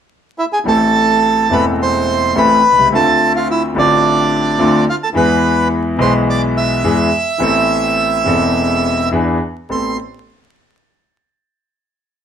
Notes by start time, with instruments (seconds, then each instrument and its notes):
0.38 bandoneon E4 E5
0.53 bandoneon G#4 G#5
0.64 grand piano A1 A2 E3 A3 C4, bandoneon A4
0.68 grand piano A4, bandoneon A5
1.49 grand piano E1 E2 E3 A3 C4, bandoneon B4
1.53 grand piano A4, bandoneon B5
1.82 bandoneon C5 C6
2.35 grand piano A1 A2 E3 A3 C4 A4, bandoneon B4 B5
2.71 grand piano B1
2.78 grand piano C2
2.85 grand piano C#2
2.90 grand piano D2 D3 A3 C4 F4
2.95 bandoneon A4 A5
3.36 bandoneon F4 F5
3.51 bandoneon E4 E5
3.74 grand piano A1 A2 D3 A3 C4
3.78 bandoneon D4 D5, grand piano F4
4.58 grand piano D2 D3 A3 C4 F4
4.90 bandoneon F4 F5
5.03 bandoneon A4 A5
5.14 grand piano E2 E3 G#3 B3 G#4, bandoneon B4 B5
5.97 grand piano B1 B2 E3 G#3 B3 G#4
6.01 bandoneon C5 C6
6.30 bandoneon D5 D6
6.57 bandoneon E5 E6
6.84 grand piano E2 E3 G#3 B3 G#4
7.38 grand piano A1 A2 E3 B3 C4 A4
8.23 grand piano E1 E2 E3 B3 C4
8.27 grand piano A4
9.11 grand piano E2 E3 B3 D4 G#4
9.69 grand piano A1 B3 C4 A4, bandoneon C6